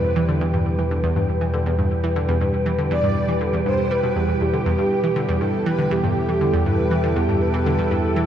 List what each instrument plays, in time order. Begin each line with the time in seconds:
Already playing: synth drone E2, analog synth pad B2 G3 E4 G4 B4, soft synth lead B4, synth texture G5
0.16 synth arpeggio sound E3
0.29 synth arpeggio sound D3
0.41 synth arpeggio sound E2
0.54 synth arpeggio sound G2
0.79 synth arpeggio sound E3
0.91 synth arpeggio sound D3
1.04 synth arpeggio sound E2
1.16 synth arpeggio sound G2
1.41 synth arpeggio sound E3
1.54 synth arpeggio sound D3
1.66 synth arpeggio sound E2
1.79 synth arpeggio sound G2
2.04 synth arpeggio sound E3
2.16 synth arpeggio sound D3
2.28 synth arpeggio sound E2
2.41 synth arpeggio sound G2
2.66 synth arpeggio sound E3
2.78 synth arpeggio sound D3
2.91 synth arpeggio sound E2, soft synth lead D5
3.03 synth arpeggio sound G2
3.28 synth arpeggio sound E3
3.41 synth arpeggio sound D3
3.53 synth arpeggio sound E2
3.66 synth arpeggio sound G2, soft synth lead C5
3.91 synth arpeggio sound G3, soft synth lead B4
4.03 synth arpeggio sound B2
4.16 synth arpeggio sound E2
4.28 synth arpeggio sound E2
4.41 synth arpeggio sound E2, soft synth lead G4
4.53 synth arpeggio sound D3
4.66 synth drone E2, synth arpeggio sound E2
4.78 synth arpeggio sound G2
5.04 synth arpeggio sound E3
5.16 synth arpeggio sound D3
5.29 synth arpeggio sound E2
5.41 synth arpeggio sound G2, soft synth lead A4
5.66 synth arpeggio sound E3, soft synth lead B4
5.79 synth arpeggio sound D3
5.85 analog synth pad A4
5.91 synth arpeggio sound E2, soft synth lead G4
6.04 synth arpeggio sound G2
6.29 synth arpeggio sound E3
6.41 synth arpeggio sound D3
6.54 synth arpeggio sound E2
6.66 synth arpeggio sound G2, soft synth lead B4
6.91 synth arpeggio sound E3
7.04 synth arpeggio sound D3
7.16 synth arpeggio sound E2, soft synth lead G4
7.29 synth arpeggio sound G2
7.41 soft synth lead B4
7.54 synth arpeggio sound E3
7.66 synth arpeggio sound D3
7.79 synth arpeggio sound E2
7.91 synth arpeggio sound G2
8.16 synth arpeggio sound E3